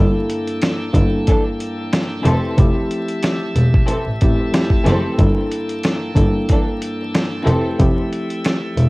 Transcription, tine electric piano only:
0, 0, Header, 1, 2, 480
1, 0, Start_track
1, 0, Tempo, 652174
1, 1899, Time_signature, 4, 2, 24, 8
1, 6544, End_track
2, 0, Start_track
2, 0, Title_t, "Tine electric piano"
2, 0, Program_c, 0, 4
2, 0, Note_on_c, 0, 43, 97
2, 0, Note_on_c, 0, 58, 84
2, 0, Note_on_c, 0, 62, 85
2, 0, Note_on_c, 0, 64, 91
2, 0, Note_on_c, 0, 69, 106
2, 642, Note_off_c, 0, 43, 0
2, 645, Note_off_c, 0, 58, 0
2, 648, Note_off_c, 0, 62, 0
2, 650, Note_off_c, 0, 64, 0
2, 652, Note_off_c, 0, 69, 0
2, 682, Note_on_c, 0, 43, 97
2, 688, Note_on_c, 0, 58, 90
2, 693, Note_on_c, 0, 62, 87
2, 698, Note_on_c, 0, 64, 82
2, 703, Note_on_c, 0, 69, 97
2, 1628, Note_on_c, 0, 41, 88
2, 1634, Note_on_c, 0, 57, 81
2, 1636, Note_off_c, 0, 64, 0
2, 1640, Note_on_c, 0, 60, 89
2, 1645, Note_on_c, 0, 64, 85
2, 1649, Note_on_c, 0, 67, 95
2, 1651, Note_off_c, 0, 43, 0
2, 1653, Note_off_c, 0, 58, 0
2, 1656, Note_off_c, 0, 62, 0
2, 1661, Note_off_c, 0, 69, 0
2, 1866, Note_off_c, 0, 41, 0
2, 1869, Note_off_c, 0, 57, 0
2, 1872, Note_off_c, 0, 60, 0
2, 1874, Note_off_c, 0, 64, 0
2, 1877, Note_off_c, 0, 67, 0
2, 1889, Note_on_c, 0, 53, 96
2, 1893, Note_on_c, 0, 57, 90
2, 1898, Note_on_c, 0, 60, 89
2, 1903, Note_on_c, 0, 64, 92
2, 1908, Note_on_c, 0, 67, 108
2, 2890, Note_off_c, 0, 53, 0
2, 2893, Note_off_c, 0, 57, 0
2, 2895, Note_off_c, 0, 60, 0
2, 2898, Note_off_c, 0, 64, 0
2, 2900, Note_off_c, 0, 67, 0
2, 3101, Note_on_c, 0, 41, 96
2, 3106, Note_on_c, 0, 57, 86
2, 3111, Note_on_c, 0, 60, 74
2, 3117, Note_on_c, 0, 64, 84
2, 3121, Note_on_c, 0, 67, 96
2, 3317, Note_off_c, 0, 41, 0
2, 3322, Note_off_c, 0, 57, 0
2, 3326, Note_on_c, 0, 41, 78
2, 3328, Note_off_c, 0, 60, 0
2, 3330, Note_off_c, 0, 64, 0
2, 3331, Note_on_c, 0, 57, 67
2, 3333, Note_off_c, 0, 67, 0
2, 3336, Note_on_c, 0, 60, 64
2, 3341, Note_on_c, 0, 64, 76
2, 3346, Note_on_c, 0, 67, 86
2, 3545, Note_off_c, 0, 41, 0
2, 3551, Note_off_c, 0, 57, 0
2, 3554, Note_on_c, 0, 41, 81
2, 3555, Note_off_c, 0, 60, 0
2, 3559, Note_on_c, 0, 57, 71
2, 3561, Note_off_c, 0, 64, 0
2, 3564, Note_on_c, 0, 60, 73
2, 3565, Note_off_c, 0, 67, 0
2, 3570, Note_on_c, 0, 64, 70
2, 3575, Note_on_c, 0, 67, 83
2, 3789, Note_off_c, 0, 41, 0
2, 3792, Note_off_c, 0, 57, 0
2, 3794, Note_off_c, 0, 60, 0
2, 3797, Note_off_c, 0, 64, 0
2, 3799, Note_off_c, 0, 67, 0
2, 3810, Note_on_c, 0, 43, 94
2, 3815, Note_on_c, 0, 58, 86
2, 3820, Note_on_c, 0, 62, 85
2, 3826, Note_on_c, 0, 64, 94
2, 3830, Note_on_c, 0, 69, 110
2, 4482, Note_off_c, 0, 43, 0
2, 4485, Note_off_c, 0, 58, 0
2, 4487, Note_off_c, 0, 62, 0
2, 4490, Note_off_c, 0, 64, 0
2, 4492, Note_off_c, 0, 69, 0
2, 4523, Note_on_c, 0, 43, 99
2, 4528, Note_on_c, 0, 58, 88
2, 4533, Note_on_c, 0, 62, 92
2, 4538, Note_on_c, 0, 64, 80
2, 4543, Note_on_c, 0, 69, 96
2, 5467, Note_on_c, 0, 41, 89
2, 5471, Note_on_c, 0, 57, 83
2, 5473, Note_off_c, 0, 64, 0
2, 5478, Note_on_c, 0, 60, 88
2, 5482, Note_on_c, 0, 64, 88
2, 5488, Note_on_c, 0, 67, 98
2, 5491, Note_off_c, 0, 43, 0
2, 5493, Note_off_c, 0, 58, 0
2, 5496, Note_off_c, 0, 62, 0
2, 5501, Note_off_c, 0, 69, 0
2, 5705, Note_off_c, 0, 41, 0
2, 5708, Note_off_c, 0, 57, 0
2, 5711, Note_off_c, 0, 60, 0
2, 5713, Note_off_c, 0, 64, 0
2, 5716, Note_off_c, 0, 67, 0
2, 5728, Note_on_c, 0, 53, 91
2, 5733, Note_on_c, 0, 57, 87
2, 5739, Note_on_c, 0, 60, 89
2, 5744, Note_on_c, 0, 64, 90
2, 5749, Note_on_c, 0, 67, 103
2, 6544, Note_off_c, 0, 53, 0
2, 6544, Note_off_c, 0, 57, 0
2, 6544, Note_off_c, 0, 60, 0
2, 6544, Note_off_c, 0, 64, 0
2, 6544, Note_off_c, 0, 67, 0
2, 6544, End_track
0, 0, End_of_file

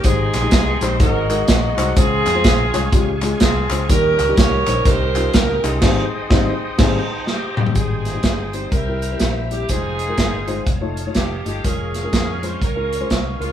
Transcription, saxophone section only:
0, 0, Header, 1, 2, 480
1, 0, Start_track
1, 0, Key_signature, -4, "major"
1, 0, Tempo, 481541
1, 48, Time_signature, 4, 2, 24, 8
1, 6768, Tempo, 485830
1, 13419, End_track
2, 0, Start_track
2, 0, Title_t, "Saxophone section"
2, 0, Program_c, 0, 65
2, 59, Note_on_c, 0, 60, 72
2, 61, Note_on_c, 0, 68, 100
2, 62, Note_on_c, 0, 63, 74
2, 827, Note_on_c, 0, 72, 94
2, 829, Note_off_c, 0, 68, 0
2, 973, Note_off_c, 0, 60, 0
2, 974, Note_off_c, 0, 63, 0
2, 1009, Note_off_c, 0, 72, 0
2, 1009, Note_on_c, 0, 70, 88
2, 1014, Note_on_c, 0, 66, 69
2, 1017, Note_on_c, 0, 63, 72
2, 1454, Note_off_c, 0, 70, 0
2, 1757, Note_off_c, 0, 66, 0
2, 1769, Note_on_c, 0, 66, 91
2, 1931, Note_off_c, 0, 63, 0
2, 1947, Note_off_c, 0, 66, 0
2, 1961, Note_on_c, 0, 68, 120
2, 1966, Note_on_c, 0, 60, 84
2, 1967, Note_on_c, 0, 65, 88
2, 2885, Note_off_c, 0, 60, 0
2, 2886, Note_off_c, 0, 65, 0
2, 2923, Note_off_c, 0, 68, 0
2, 3397, Note_on_c, 0, 68, 85
2, 3402, Note_on_c, 0, 60, 65
2, 3402, Note_on_c, 0, 65, 63
2, 3847, Note_off_c, 0, 68, 0
2, 3850, Note_off_c, 0, 60, 0
2, 3850, Note_off_c, 0, 65, 0
2, 3884, Note_on_c, 0, 67, 78
2, 3886, Note_on_c, 0, 70, 104
2, 3890, Note_on_c, 0, 61, 83
2, 4356, Note_off_c, 0, 70, 0
2, 4358, Note_off_c, 0, 67, 0
2, 4363, Note_on_c, 0, 73, 102
2, 4368, Note_on_c, 0, 70, 79
2, 4370, Note_on_c, 0, 67, 80
2, 4807, Note_off_c, 0, 61, 0
2, 4837, Note_off_c, 0, 67, 0
2, 4844, Note_off_c, 0, 73, 0
2, 4845, Note_on_c, 0, 72, 105
2, 4849, Note_on_c, 0, 67, 79
2, 5286, Note_off_c, 0, 70, 0
2, 5323, Note_on_c, 0, 70, 82
2, 5325, Note_off_c, 0, 72, 0
2, 5619, Note_off_c, 0, 70, 0
2, 5626, Note_on_c, 0, 63, 65
2, 5628, Note_on_c, 0, 60, 66
2, 5629, Note_on_c, 0, 68, 85
2, 5767, Note_off_c, 0, 67, 0
2, 7244, Note_off_c, 0, 60, 0
2, 7248, Note_off_c, 0, 63, 0
2, 7256, Note_on_c, 0, 60, 54
2, 7260, Note_on_c, 0, 63, 57
2, 7269, Note_on_c, 0, 67, 72
2, 7543, Note_off_c, 0, 68, 0
2, 7695, Note_off_c, 0, 60, 0
2, 7697, Note_off_c, 0, 63, 0
2, 7702, Note_off_c, 0, 67, 0
2, 7727, Note_on_c, 0, 60, 58
2, 7727, Note_on_c, 0, 63, 57
2, 7730, Note_on_c, 0, 68, 81
2, 8496, Note_on_c, 0, 72, 82
2, 8500, Note_off_c, 0, 68, 0
2, 8643, Note_off_c, 0, 60, 0
2, 8644, Note_off_c, 0, 63, 0
2, 8668, Note_off_c, 0, 72, 0
2, 8677, Note_on_c, 0, 70, 76
2, 8683, Note_on_c, 0, 67, 56
2, 8687, Note_on_c, 0, 64, 57
2, 9159, Note_off_c, 0, 70, 0
2, 9284, Note_off_c, 0, 67, 0
2, 9452, Note_on_c, 0, 67, 84
2, 9605, Note_off_c, 0, 64, 0
2, 9626, Note_off_c, 0, 67, 0
2, 9638, Note_on_c, 0, 68, 100
2, 9645, Note_on_c, 0, 60, 69
2, 9645, Note_on_c, 0, 63, 69
2, 10565, Note_off_c, 0, 60, 0
2, 10565, Note_off_c, 0, 63, 0
2, 10601, Note_off_c, 0, 68, 0
2, 11089, Note_on_c, 0, 67, 64
2, 11361, Note_off_c, 0, 67, 0
2, 11399, Note_on_c, 0, 67, 75
2, 11562, Note_off_c, 0, 67, 0
2, 11574, Note_on_c, 0, 61, 64
2, 11577, Note_on_c, 0, 68, 90
2, 12347, Note_off_c, 0, 68, 0
2, 12364, Note_on_c, 0, 72, 78
2, 12492, Note_off_c, 0, 61, 0
2, 12534, Note_on_c, 0, 61, 62
2, 12538, Note_off_c, 0, 72, 0
2, 12538, Note_on_c, 0, 70, 83
2, 13013, Note_off_c, 0, 70, 0
2, 13301, Note_on_c, 0, 65, 83
2, 13419, Note_off_c, 0, 61, 0
2, 13419, Note_off_c, 0, 65, 0
2, 13419, End_track
0, 0, End_of_file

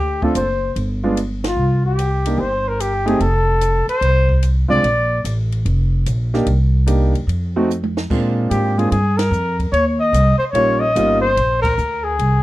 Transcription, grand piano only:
0, 0, Header, 1, 2, 480
1, 0, Start_track
1, 0, Tempo, 407886
1, 1857, Time_signature, 4, 2, 24, 8
1, 14626, End_track
2, 0, Start_track
2, 0, Title_t, "Grand piano"
2, 0, Program_c, 0, 0
2, 255, Note_on_c, 0, 57, 63
2, 265, Note_on_c, 0, 60, 60
2, 267, Note_on_c, 0, 62, 59
2, 275, Note_on_c, 0, 65, 72
2, 402, Note_off_c, 0, 57, 0
2, 407, Note_off_c, 0, 60, 0
2, 408, Note_off_c, 0, 62, 0
2, 412, Note_off_c, 0, 65, 0
2, 1218, Note_on_c, 0, 65, 69
2, 1221, Note_on_c, 0, 56, 67
2, 1222, Note_on_c, 0, 59, 62
2, 1223, Note_on_c, 0, 62, 64
2, 1362, Note_off_c, 0, 65, 0
2, 1363, Note_off_c, 0, 56, 0
2, 1363, Note_off_c, 0, 59, 0
2, 1364, Note_off_c, 0, 62, 0
2, 2667, Note_on_c, 0, 62, 47
2, 2668, Note_on_c, 0, 63, 51
2, 2671, Note_on_c, 0, 58, 54
2, 2672, Note_on_c, 0, 67, 61
2, 2803, Note_off_c, 0, 62, 0
2, 2804, Note_off_c, 0, 63, 0
2, 2806, Note_off_c, 0, 58, 0
2, 2806, Note_off_c, 0, 67, 0
2, 3597, Note_on_c, 0, 63, 66
2, 3600, Note_on_c, 0, 57, 71
2, 3606, Note_on_c, 0, 67, 76
2, 3607, Note_on_c, 0, 60, 62
2, 3747, Note_off_c, 0, 63, 0
2, 3749, Note_off_c, 0, 57, 0
2, 3752, Note_off_c, 0, 60, 0
2, 3752, Note_off_c, 0, 67, 0
2, 5512, Note_on_c, 0, 56, 63
2, 5512, Note_on_c, 0, 60, 57
2, 5514, Note_on_c, 0, 65, 67
2, 5518, Note_on_c, 0, 62, 54
2, 5662, Note_off_c, 0, 56, 0
2, 5663, Note_off_c, 0, 60, 0
2, 5664, Note_off_c, 0, 65, 0
2, 5666, Note_off_c, 0, 62, 0
2, 7459, Note_on_c, 0, 67, 74
2, 7460, Note_on_c, 0, 58, 68
2, 7460, Note_on_c, 0, 63, 63
2, 7466, Note_on_c, 0, 62, 62
2, 7596, Note_off_c, 0, 58, 0
2, 7596, Note_off_c, 0, 63, 0
2, 7596, Note_off_c, 0, 67, 0
2, 7599, Note_off_c, 0, 62, 0
2, 8079, Note_on_c, 0, 62, 52
2, 8079, Note_on_c, 0, 63, 52
2, 8083, Note_on_c, 0, 58, 57
2, 8089, Note_on_c, 0, 67, 64
2, 8372, Note_off_c, 0, 62, 0
2, 8372, Note_off_c, 0, 63, 0
2, 8374, Note_off_c, 0, 58, 0
2, 8377, Note_off_c, 0, 67, 0
2, 8897, Note_on_c, 0, 57, 72
2, 8900, Note_on_c, 0, 60, 69
2, 8902, Note_on_c, 0, 66, 77
2, 8903, Note_on_c, 0, 63, 65
2, 9035, Note_off_c, 0, 57, 0
2, 9037, Note_off_c, 0, 60, 0
2, 9038, Note_off_c, 0, 63, 0
2, 9038, Note_off_c, 0, 66, 0
2, 9531, Note_on_c, 0, 56, 51
2, 9538, Note_on_c, 0, 58, 52
2, 9538, Note_on_c, 0, 62, 48
2, 9540, Note_on_c, 0, 60, 45
2, 9541, Note_on_c, 0, 65, 57
2, 10268, Note_off_c, 0, 56, 0
2, 10272, Note_off_c, 0, 58, 0
2, 10272, Note_off_c, 0, 62, 0
2, 10273, Note_off_c, 0, 60, 0
2, 10273, Note_off_c, 0, 65, 0
2, 10326, Note_on_c, 0, 56, 48
2, 10333, Note_on_c, 0, 58, 44
2, 10335, Note_on_c, 0, 60, 44
2, 10339, Note_on_c, 0, 62, 43
2, 10340, Note_on_c, 0, 65, 57
2, 10471, Note_off_c, 0, 56, 0
2, 10475, Note_off_c, 0, 58, 0
2, 10476, Note_off_c, 0, 60, 0
2, 10478, Note_off_c, 0, 62, 0
2, 10478, Note_off_c, 0, 65, 0
2, 12405, Note_on_c, 0, 55, 57
2, 12409, Note_on_c, 0, 61, 51
2, 12413, Note_on_c, 0, 58, 51
2, 12413, Note_on_c, 0, 63, 52
2, 12416, Note_on_c, 0, 65, 64
2, 12701, Note_off_c, 0, 55, 0
2, 12703, Note_off_c, 0, 61, 0
2, 12705, Note_off_c, 0, 58, 0
2, 12705, Note_off_c, 0, 63, 0
2, 12707, Note_off_c, 0, 65, 0
2, 12887, Note_on_c, 0, 55, 64
2, 12893, Note_on_c, 0, 58, 56
2, 12896, Note_on_c, 0, 61, 52
2, 12897, Note_on_c, 0, 65, 68
2, 12898, Note_on_c, 0, 63, 55
2, 13183, Note_off_c, 0, 55, 0
2, 13186, Note_off_c, 0, 58, 0
2, 13187, Note_off_c, 0, 61, 0
2, 13188, Note_off_c, 0, 65, 0
2, 13189, Note_off_c, 0, 63, 0
2, 14626, End_track
0, 0, End_of_file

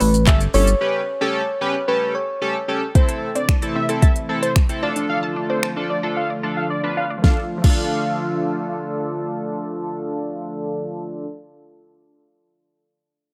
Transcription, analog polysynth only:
0, 0, Header, 1, 2, 480
1, 0, Start_track
1, 0, Key_signature, -1, "minor"
1, 0, Tempo, 535714
1, 724, Time_signature, 4, 2, 24, 8
1, 11947, End_track
2, 0, Start_track
2, 0, Title_t, "Analog polysynth"
2, 0, Program_c, 0, 90
2, 243, Note_on_c, 0, 61, 80
2, 245, Note_on_c, 0, 67, 73
2, 248, Note_on_c, 0, 69, 90
2, 367, Note_off_c, 0, 61, 0
2, 368, Note_off_c, 0, 67, 0
2, 370, Note_off_c, 0, 69, 0
2, 483, Note_on_c, 0, 61, 76
2, 484, Note_on_c, 0, 67, 69
2, 487, Note_on_c, 0, 69, 84
2, 607, Note_off_c, 0, 61, 0
2, 608, Note_off_c, 0, 67, 0
2, 609, Note_off_c, 0, 69, 0
2, 723, Note_on_c, 0, 61, 78
2, 725, Note_on_c, 0, 67, 72
2, 727, Note_on_c, 0, 71, 84
2, 909, Note_off_c, 0, 61, 0
2, 910, Note_off_c, 0, 67, 0
2, 911, Note_off_c, 0, 71, 0
2, 1082, Note_on_c, 0, 61, 95
2, 1085, Note_on_c, 0, 67, 85
2, 1087, Note_on_c, 0, 69, 105
2, 1269, Note_off_c, 0, 61, 0
2, 1270, Note_off_c, 0, 67, 0
2, 1271, Note_off_c, 0, 69, 0
2, 1442, Note_on_c, 0, 61, 90
2, 1444, Note_on_c, 0, 67, 87
2, 1447, Note_on_c, 0, 71, 96
2, 1567, Note_off_c, 0, 61, 0
2, 1568, Note_off_c, 0, 67, 0
2, 1569, Note_off_c, 0, 71, 0
2, 1682, Note_on_c, 0, 61, 77
2, 1684, Note_on_c, 0, 67, 70
2, 1687, Note_on_c, 0, 69, 87
2, 1930, Note_off_c, 0, 61, 0
2, 1931, Note_off_c, 0, 67, 0
2, 1932, Note_off_c, 0, 69, 0
2, 2162, Note_on_c, 0, 61, 76
2, 2164, Note_on_c, 0, 67, 70
2, 2167, Note_on_c, 0, 69, 88
2, 2287, Note_off_c, 0, 61, 0
2, 2288, Note_off_c, 0, 67, 0
2, 2289, Note_off_c, 0, 69, 0
2, 2402, Note_on_c, 0, 61, 74
2, 2404, Note_on_c, 0, 67, 73
2, 2406, Note_on_c, 0, 69, 82
2, 2527, Note_off_c, 0, 61, 0
2, 2528, Note_off_c, 0, 67, 0
2, 2529, Note_off_c, 0, 69, 0
2, 2642, Note_on_c, 0, 60, 76
2, 2644, Note_on_c, 0, 64, 66
2, 2647, Note_on_c, 0, 69, 81
2, 2952, Note_off_c, 0, 60, 0
2, 2953, Note_off_c, 0, 64, 0
2, 2954, Note_off_c, 0, 69, 0
2, 3242, Note_on_c, 0, 60, 76
2, 3245, Note_on_c, 0, 64, 68
2, 3247, Note_on_c, 0, 69, 84
2, 3367, Note_off_c, 0, 60, 0
2, 3368, Note_off_c, 0, 64, 0
2, 3369, Note_off_c, 0, 69, 0
2, 3482, Note_on_c, 0, 60, 75
2, 3484, Note_on_c, 0, 64, 70
2, 3487, Note_on_c, 0, 69, 79
2, 3668, Note_off_c, 0, 60, 0
2, 3670, Note_off_c, 0, 64, 0
2, 3671, Note_off_c, 0, 69, 0
2, 3842, Note_on_c, 0, 60, 72
2, 3845, Note_on_c, 0, 64, 68
2, 3847, Note_on_c, 0, 69, 83
2, 4028, Note_off_c, 0, 60, 0
2, 4030, Note_off_c, 0, 64, 0
2, 4031, Note_off_c, 0, 69, 0
2, 4202, Note_on_c, 0, 60, 77
2, 4204, Note_on_c, 0, 64, 70
2, 4207, Note_on_c, 0, 69, 82
2, 4316, Note_off_c, 0, 69, 0
2, 4322, Note_on_c, 0, 62, 75
2, 4323, Note_off_c, 0, 60, 0
2, 4324, Note_off_c, 0, 64, 0
2, 4325, Note_on_c, 0, 65, 72
2, 4327, Note_on_c, 0, 69, 82
2, 4995, Note_off_c, 0, 62, 0
2, 4996, Note_off_c, 0, 65, 0
2, 4998, Note_off_c, 0, 69, 0
2, 5163, Note_on_c, 0, 62, 75
2, 5165, Note_on_c, 0, 65, 68
2, 5167, Note_on_c, 0, 69, 83
2, 5287, Note_off_c, 0, 62, 0
2, 5288, Note_off_c, 0, 65, 0
2, 5289, Note_off_c, 0, 69, 0
2, 5403, Note_on_c, 0, 62, 74
2, 5405, Note_on_c, 0, 65, 66
2, 5407, Note_on_c, 0, 69, 80
2, 5589, Note_off_c, 0, 62, 0
2, 5590, Note_off_c, 0, 65, 0
2, 5591, Note_off_c, 0, 69, 0
2, 5763, Note_on_c, 0, 62, 76
2, 5765, Note_on_c, 0, 65, 67
2, 5767, Note_on_c, 0, 69, 78
2, 5949, Note_off_c, 0, 62, 0
2, 5950, Note_off_c, 0, 65, 0
2, 5951, Note_off_c, 0, 69, 0
2, 6123, Note_on_c, 0, 62, 73
2, 6125, Note_on_c, 0, 65, 67
2, 6127, Note_on_c, 0, 71, 85
2, 6309, Note_off_c, 0, 62, 0
2, 6310, Note_off_c, 0, 65, 0
2, 6311, Note_off_c, 0, 71, 0
2, 6485, Note_on_c, 0, 62, 80
2, 6485, Note_on_c, 0, 65, 73
2, 6485, Note_on_c, 0, 69, 85
2, 6619, Note_off_c, 0, 62, 0
2, 6619, Note_off_c, 0, 65, 0
2, 6619, Note_off_c, 0, 69, 0
2, 6845, Note_on_c, 0, 62, 81
2, 6845, Note_on_c, 0, 65, 74
2, 6845, Note_on_c, 0, 69, 90
2, 10087, Note_off_c, 0, 62, 0
2, 10087, Note_off_c, 0, 65, 0
2, 10087, Note_off_c, 0, 69, 0
2, 11947, End_track
0, 0, End_of_file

